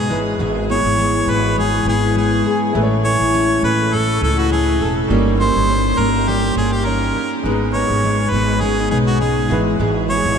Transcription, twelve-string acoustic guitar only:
0.00 0.98 G#3 medium
0.00 1.28 B3 medium
0.00 0.17 D#4 medium
0.11 0.38 G#2 medium
0.39 1.56 G#2 medium
0.69 1.86 E4 medium
0.98 2.15 G#3 medium
1.28 2.81 B3 medium
1.57 2.74 G#2 medium
1.87 3.04 E4 medium
2.16 2.81 G#3 medium
2.46 2.82 G#4 medium
2.75 3.92 A2 medium
3.04 4.21 E4 medium
3.34 4.50 A3 medium
3.64 5.44 C#4 medium
3.93 5.17 A2 medium
4.22 5.17 E4 medium
4.52 5.10 A3 medium
4.81 5.17 A4 medium
5.11 6.27 G3 medium
5.41 6.57 D#4 medium
5.70 5.98 C#4 medium
5.99 6.85 C#4 medium
6.28 7.52 G3 medium
6.57 7.74 D#4 medium
6.86 7.52 C#4 medium
7.15 7.51 A#4 medium
7.45 8.61 G#2 medium
7.75 8.90 D#4 medium
8.04 9.21 G#3 medium
8.33 10.38 B3 medium
8.62 9.49 G#2 medium
8.91 9.57 D#4 medium
9.21 10.37 G#3 medium
9.50 9.78 G#2 medium
9.80 10.38 G#2 medium
10.09 10.38 E4 medium

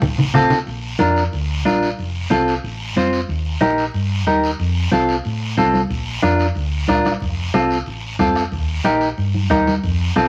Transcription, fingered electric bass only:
0.02 0.28 A1 loud
0.35 0.48 A1 loud
0.67 0.93 A#1 loud
1.00 1.26 F2 medium
1.33 1.66 D2 medium
1.66 1.92 A#1 loud
1.99 2.25 F1 loud
2.31 2.57 C2 medium
2.64 2.96 A1 medium
2.96 3.22 F1 medium
3.29 3.55 D#2 loud
3.61 3.88 A#1 medium
3.94 4.27 G2 medium
4.27 4.53 D#2 loud
4.59 4.86 F2 loud
4.92 5.18 C2 medium
5.25 5.59 A2 medium
5.57 5.84 C2 loud
5.90 6.17 A#1 loud
6.23 6.49 F2 medium
6.56 6.89 D2 medium
6.89 7.15 A#1 medium
7.22 7.48 F1 loud
7.54 7.80 C2 medium
7.87 8.20 A1 medium
8.20 8.46 F1 loud
8.52 8.78 D#2 loud
8.85 9.11 A#1 medium
9.18 9.51 G2 medium
9.51 9.77 D#2 loud
9.83 10.09 F2 loud
10.16 10.28 C2 medium

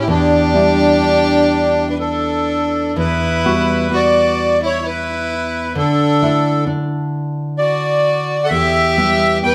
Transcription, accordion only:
0.01 0.08 E4 medium
0.10 1.95 D4 medium
1.90 1.98 B4 soft
1.99 2.94 A4 medium
2.99 3.95 B4 medium
3.95 4.59 D5 medium
4.65 4.87 C#5 medium
4.86 5.73 B4 medium
5.78 6.65 A4 medium
7.58 8.46 D5 medium
8.44 8.50 F#5 medium
8.49 9.38 E5 loud
9.43 9.55 G5 medium

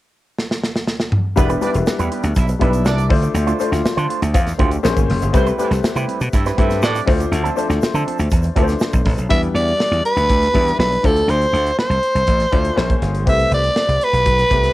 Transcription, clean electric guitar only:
1.37 muted clean electric guitar stroke soft
1.49 1.60 B3 medium
1.49 1.61 D4 medium
1.49 1.61 G4 medium
1.49 1.61 B4 medium
1.61 1.78 B3 medium
1.61 1.74 D4 medium
1.61 1.74 G4 medium
1.61 1.73 B4 medium
1.74 muted clean electric guitar stroke soft
1.87 muted clean electric guitar stroke soft
1.99 2.10 B3 medium
1.99 2.11 D4 medium
1.99 2.11 G4 medium
1.99 2.11 B4 medium
2.11 2.28 B3 soft
2.11 2.24 D4 medium
2.11 2.23 G4 medium
2.11 2.23 B4 medium
2.24 muted clean electric guitar stroke soft
2.36 muted clean electric guitar stroke soft
2.49 muted clean electric guitar stroke soft
2.61 2.81 B3 medium
2.61 2.74 D4 medium
2.61 2.73 G4 medium
2.61 2.72 B4 medium
2.74 muted clean electric guitar stroke soft
2.86 muted clean electric guitar stroke soft
2.98 muted clean electric guitar stroke soft
3.23 muted clean electric guitar stroke soft
3.35 muted clean electric guitar stroke soft
3.47 3.57 A3 medium
3.47 3.58 D4 medium
3.47 3.59 F4 medium
3.47 3.59 C5 medium
3.59 3.76 A3 soft
3.59 3.71 D4 medium
3.59 3.71 F4 medium
3.59 3.71 C5 medium
3.72 muted clean electric guitar stroke soft
3.84 muted clean electric guitar stroke soft
3.97 4.08 A3 medium
3.97 4.08 D4 medium
3.97 4.08 F4 medium
3.97 4.09 C5 medium
4.09 4.26 A3 medium
4.09 4.22 D4 medium
4.09 4.21 F4 medium
4.09 4.21 C5 medium
4.22 muted clean electric guitar stroke soft
4.34 muted clean electric guitar stroke soft
4.47 muted clean electric guitar stroke soft
4.59 4.79 A3 medium
4.59 4.72 D4 medium
4.59 4.71 F4 medium
4.59 4.71 C5 medium
4.72 muted clean electric guitar stroke soft
4.84 muted clean electric guitar stroke soft
4.96 muted clean electric guitar stroke soft
5.22 muted clean electric guitar stroke soft
5.34 muted clean electric guitar stroke soft
5.46 5.58 G3 medium
5.46 5.58 C4 medium
5.46 5.58 E4 medium
5.46 5.59 B4 medium
5.59 5.75 G3 medium
5.59 5.72 C4 medium
5.59 5.72 E4 medium
5.59 5.71 B4 medium
5.73 muted clean electric guitar stroke soft
5.84 muted clean electric guitar stroke soft
5.96 6.06 G3 medium
5.96 6.07 C4 medium
5.96 6.07 E4 medium
5.96 6.08 B4 medium
6.08 6.24 G3 medium
6.08 6.21 C4 medium
6.08 6.20 E4 medium
6.08 6.20 B4 medium
6.21 muted clean electric guitar stroke soft
6.33 muted clean electric guitar stroke soft
6.46 6.56 G3 medium
6.46 6.57 C4 medium
6.46 6.57 E4 medium
6.46 6.58 B4 medium
6.58 6.74 G3 medium
6.58 6.70 C4 medium
6.58 6.70 E4 medium
6.58 6.69 B4 medium
6.70 muted clean electric guitar stroke soft
6.82 muted clean electric guitar stroke soft
6.95 muted clean electric guitar stroke soft
7.20 muted clean electric guitar stroke soft
7.32 muted clean electric guitar stroke soft
7.44 7.55 F3 medium
7.44 7.56 C4 medium
7.44 7.57 D4 medium
7.44 7.57 A4 medium
7.56 7.73 F3 medium
7.56 7.69 C4 medium
7.56 7.68 D4 medium
7.56 7.68 A4 medium
7.70 muted clean electric guitar stroke soft
7.82 muted clean electric guitar stroke soft
7.95 8.05 F3 medium
7.95 8.06 C4 medium
7.95 8.06 D4 medium
7.95 8.06 A4 medium
8.06 8.22 F3 medium
8.06 8.19 C4 medium
8.06 8.19 D4 medium
8.06 8.18 A4 medium
8.20 muted clean electric guitar stroke soft
8.32 muted clean electric guitar stroke soft
8.44 muted clean electric guitar stroke soft
8.56 8.76 F3 medium
8.56 8.68 C4 medium
8.56 8.68 D4 medium
8.56 8.67 A4 medium
8.69 muted clean electric guitar stroke soft
8.80 muted clean electric guitar stroke soft
8.93 muted clean electric guitar stroke soft
9.18 muted clean electric guitar stroke soft

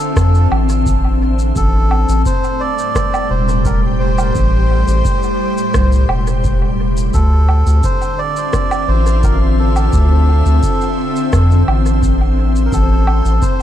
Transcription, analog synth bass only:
0.16 0.47 F2 loud
0.51 1.53 A1 medium
1.56 2.05 A1 loud
2.09 2.24 A1 loud
3.30 4.31 E1 loud
4.35 4.84 A1 loud
4.88 5.03 A1 medium
5.74 6.05 C2 loud
6.09 7.10 E1 medium
7.14 7.63 D2 loud
7.66 7.81 D2 medium
8.88 9.90 A1 loud
9.93 10.42 D2 loud
10.46 10.61 D2 medium
11.33 11.63 F2 loud
11.68 12.69 A1 medium
12.72 13.22 A1 loud
13.25 13.40 A1 medium

